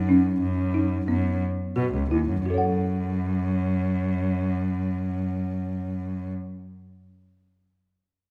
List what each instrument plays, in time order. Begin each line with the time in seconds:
Already playing: cello F#2
0.09 marimba C#4
0.42 cello F#2
0.74 marimba D#4
1.08 cello F#2, marimba B3
1.76 cello B2, marimba F#4
1.93 cello C#2
2.11 cello D#2, marimba E4
2.29 cello F#2
2.46 cello F#2, marimba F#4
2.50 marimba A4 C#5
2.58 marimba F#5